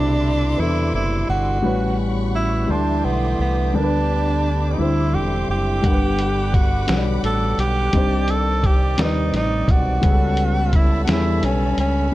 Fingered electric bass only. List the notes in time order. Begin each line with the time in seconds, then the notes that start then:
Already playing: C2
0.59 E2
0.93 F#1
1.29 G1
1.64 A1
2.69 D2
3.04 B1
3.39 C2
3.73 D2
4.79 D2
5.14 E1
5.48 F#1
5.84 G1
6.89 B1
7.23 A1
7.58 B1
7.93 C2
8.98 D#2
9.32 A1
9.68 B1
10.03 C#2
11.08 E2
11.43 B1
11.78 C#2